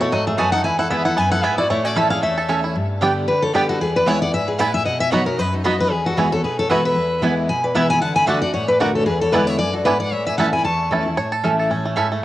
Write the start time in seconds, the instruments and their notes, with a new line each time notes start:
Already playing: steel-string acoustic guitar B2, five-string banjo F#4
0.00 five-string banjo A3, steel-string acoustic guitar B3 F#4 C#5, fiddle E4
0.12 steel-string acoustic guitar G#2 D#5, five-string banjo F#3, fiddle F#4
0.27 five-string banjo A3, fiddle G#4, steel-string acoustic guitar E5
0.38 steel-string acoustic guitar F#2 G#5, mandolin B3 F#4 D#5 A5, five-string banjo A4, fiddle B4
0.52 five-string banjo D#4, fiddle A4, steel-string acoustic guitar F#5
0.64 steel-string acoustic guitar E2 G#5, five-string banjo E4, fiddle B4
0.79 five-string banjo E4, fiddle A4, steel-string acoustic guitar F#5
0.90 steel-string acoustic guitar E3 G#3 B3 E4 E5, five-string banjo B3, mandolin B3 E4 B4 G#5, fiddle G#4
1.05 steel-string acoustic guitar B3 E4 F#5, five-string banjo E4, fiddle A4
1.17 steel-string acoustic guitar F#2 G#5, five-string banjo B3, fiddle B4
1.32 five-string banjo E4, fiddle A4, steel-string acoustic guitar F#5
1.43 steel-string acoustic guitar G#2 E5, mandolin B3 E4 B4 G#5, five-string banjo B3, fiddle G#4
1.58 five-string banjo E4, fiddle F#4, steel-string acoustic guitar D5
1.70 steel-string acoustic guitar A2 C#5, five-string banjo A3, fiddle E4
1.84 five-string banjo C#4, fiddle F#4, steel-string acoustic guitar D5
1.95 steel-string acoustic guitar E3 A3 C#4 E4 E5, mandolin C#4 A4 E5 A5, five-string banjo E4, fiddle A4
2.10 five-string banjo C#4, steel-string acoustic guitar C#4 E4 F5, fiddle G#4
2.22 steel-string acoustic guitar E2 E5, five-string banjo A3, fiddle A4
2.37 five-string banjo A4
2.48 steel-string acoustic guitar E3 A3 C#4 E4, mandolin C#4 A4 E5 A5, five-string banjo C#4
2.64 five-string banjo E4
2.75 steel-string acoustic guitar G2
3.01 steel-string acoustic guitar D3 G3 B3 G4, mandolin B3 G4 D5 G5, five-string banjo B3 D4 G4
3.28 steel-string acoustic guitar D3 B4, fiddle D5
3.42 steel-string acoustic guitar A4, fiddle C#5
3.53 steel-string acoustic guitar D3 G3 B3 G4, mandolin B3 G4 D5 G5, five-string banjo B3 D4 G4, fiddle B4
3.69 steel-string acoustic guitar F#4, fiddle A4
3.80 steel-string acoustic guitar E2 G#4, fiddle B4
3.95 steel-string acoustic guitar B4, fiddle D5
4.06 steel-string acoustic guitar E3 G#3 B3 E4 C#5, mandolin B3 E4 B4 G#5, five-string banjo B3 E4, fiddle E5
4.21 steel-string acoustic guitar B3 E4 D5, fiddle F#5
4.33 steel-string acoustic guitar G#2 E5, fiddle G#5
4.48 steel-string acoustic guitar G#4, fiddle B4
4.58 steel-string acoustic guitar A2 B4, mandolin B3 E4 B4 G#5, five-string banjo B3 E4, fiddle E5
4.74 steel-string acoustic guitar E5, fiddle G#5
4.85 steel-string acoustic guitar B2 D#5, fiddle F#5
5.00 steel-string acoustic guitar E5, fiddle G#5
5.11 steel-string acoustic guitar F#3 B3 D#4 F#4 C#5, mandolin B3 F#4 D#5 B5, five-string banjo B3 D#4 F#4, fiddle F#5
5.26 steel-string acoustic guitar D#4 F#4 A#4, fiddle C#5
5.38 steel-string acoustic guitar F#2 B4, fiddle D#5
5.52 steel-string acoustic guitar D#4, fiddle F#4
5.64 steel-string acoustic guitar F#3 B3 D#4 F#4, mandolin B3 F#4 D#5 B5, five-string banjo B3 D#4 F#4, fiddle B4
5.79 steel-string acoustic guitar B4, fiddle D#5
5.91 steel-string acoustic guitar E2 G#4, fiddle B4
6.05 steel-string acoustic guitar F#4, fiddle A4
6.17 steel-string acoustic guitar E3 G#3 B3 F#4 G#4, mandolin B3 F#4 E5 G#5, five-string banjo B3 E4, fiddle B4
6.31 steel-string acoustic guitar B3 F#4 A4, fiddle C#5
6.44 steel-string acoustic guitar B2 G#4, fiddle B4
6.59 steel-string acoustic guitar A4, fiddle C#5
6.69 steel-string acoustic guitar E3 G#3 B3 F#4 B4, mandolin B3 F#4 E5 G#5, five-string banjo B3 E4, fiddle E5
6.85 steel-string acoustic guitar B4, fiddle E5
6.96 steel-string acoustic guitar E2
7.22 steel-string acoustic guitar E3 G#3 B3 E4, mandolin B3 E4 B4 G#5, five-string banjo B3 E4
7.49 steel-string acoustic guitar B2 G#5, fiddle B5
7.64 steel-string acoustic guitar B4, fiddle D5
7.75 steel-string acoustic guitar E3 G#3 B3 E4 E5, mandolin B3 E4 B4 G#5, five-string banjo B3 E4, fiddle G#5
7.90 steel-string acoustic guitar G#5, fiddle B5
8.02 steel-string acoustic guitar D3 F#5, fiddle A5
8.16 steel-string acoustic guitar G#5, fiddle B5
8.27 steel-string acoustic guitar D3 A3 D4 F#4 E5, mandolin A3 F#4 D5 F#5, five-string banjo A3 D4 F#4, fiddle A5
8.42 steel-string acoustic guitar D4 F#4 D5, fiddle F#5
8.54 steel-string acoustic guitar A2 C#5, fiddle F#5
8.68 steel-string acoustic guitar B4, fiddle D5
8.80 steel-string acoustic guitar D3 A3 D4 F#4 A#4, mandolin A3 F#4 D5 F#5, five-string banjo A3 D4 F#4, fiddle D5
8.95 steel-string acoustic guitar A4, fiddle C#5
9.06 steel-string acoustic guitar E2 G#4, fiddle B4
9.21 steel-string acoustic guitar A4, fiddle C#5
9.32 steel-string acoustic guitar D3 G#3 B3 E4 B4, mandolin B3 E4 D5 G#5, five-string banjo B3 D4 E4, fiddle D5
9.47 steel-string acoustic guitar C#5, fiddle E5
9.59 steel-string acoustic guitar F#2 D5, fiddle G#5
9.74 steel-string acoustic guitar F#4, fiddle A4
9.85 steel-string acoustic guitar G#2 B4, mandolin B3 E4 D5 G#5, five-string banjo B3 D4 E4, fiddle D5
10.00 steel-string acoustic guitar D5, fiddle F#5
10.12 steel-string acoustic guitar A2 C#5, fiddle E5
10.27 steel-string acoustic guitar E5, fiddle G#5
10.38 steel-string acoustic guitar E3 A3 C#4 E4 F#5, five-string banjo A3 C#4 E4, mandolin C#4 A4 E5 A5, fiddle A5
10.53 steel-string acoustic guitar C#4 E4 G#5, fiddle B5
10.65 steel-string acoustic guitar E2 A5, fiddle C#6
10.91 steel-string acoustic guitar E3 A3 C#4 E4, five-string banjo A3 C#4 E4, mandolin C#4 A4 E5 A5
11.06 steel-string acoustic guitar C#4 E4
11.17 steel-string acoustic guitar A2, five-string banjo C#5
11.32 five-string banjo A4
11.43 steel-string acoustic guitar E3 A3 C#4 E4, five-string banjo A3, mandolin C#4 A4 E5 A5
11.59 five-string banjo A4
11.70 steel-string acoustic guitar A2, five-string banjo C#4
11.85 five-string banjo A3
11.96 steel-string acoustic guitar G#2, mandolin C#4 A4 E5 A5, five-string banjo E4
12.12 five-string banjo A3